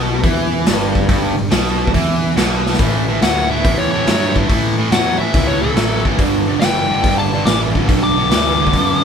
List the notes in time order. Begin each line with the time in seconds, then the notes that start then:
Already playing: B1 B2
0.23 E2 E3, kick, open hi-hat
0.66 G1 G2, snare, open hi-hat
0.95 kick
1.09 G1 G2, kick, open hi-hat
1.38 G1 G2
1.51 B1 B2, snare, open hi-hat
1.67 snare
1.87 kick
1.94 E2 E3, kick, open hi-hat
2.36 B1 B2, snare, open hi-hat
2.66 snare
2.73 snare
2.79 A1 A2 E3, kick, open hi-hat
3.08 A2 E3
3.21 D2 A2 F#3 F#5, snare, open hi-hat
3.51 A2 E3 E5
3.64 E2 A2 E3, kick, open hi-hat
3.78 C#5
3.91 A2 E3 C#5
4.06 G2 A2 F#3, snare, open hi-hat
4.34 A2 E3, kick
4.49 A2 E3, kick, open hi-hat
4.78 A2 E3
4.91 E2 A2 F#3 F#5, snare, open hi-hat
5.18 A2 E3 E5, muted picked electric bass stroke
5.34 C#2 A2 E3, kick, open hi-hat
5.47 C#5
5.61 A2 E3 A4
5.74 A1 A2 F#3, snare, open hi-hat
6.05 A2 E3, muted picked electric bass stroke, kick
6.18 G1 G2 D3, kick, open hi-hat
6.47 G2 D3
6.59 F#1 G2 E3 G5, snare, open hi-hat
6.90 G2 D3
7.04 G1 G2 D3, kick, open hi-hat
7.18 A5
7.33 G2 D3
7.45 A1 G2 E3 D6, snare, open hi-hat
7.74 G2 D3, kick
7.88 B1 G2 D3, kick, open hi-hat
8.03 D6
8.17 G2 D3
8.29 D2 G2 E3 D6, snare, open hi-hat
8.46 snare
8.59 G2 D3
8.67 kick
8.73 F#2 G2 D3, kick, open hi-hat
9.01 G2